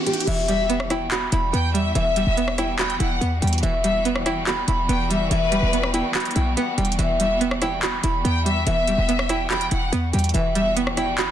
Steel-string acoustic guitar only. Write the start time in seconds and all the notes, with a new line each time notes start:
0.07 G4
0.27 E5
0.91 G5
1.11 B5
1.32 B5
1.96 E5
2.58 G5
2.79 B5
3.00 G5
3.21 F#5
3.42 G5
3.63 E5
4.26 G5
4.47 B5
4.68 B5
5.32 E5
5.94 G5
6.15 B5
6.36 G5
6.57 F#5
6.78 G5
6.99 E5
7.62 G5
7.83 B5
8.03 B5
8.67 E5
9.30 G5
9.50 B5
9.72 G5
9.92 F#5
10.13 G5
10.34 E5
10.97 G5
11.19 B5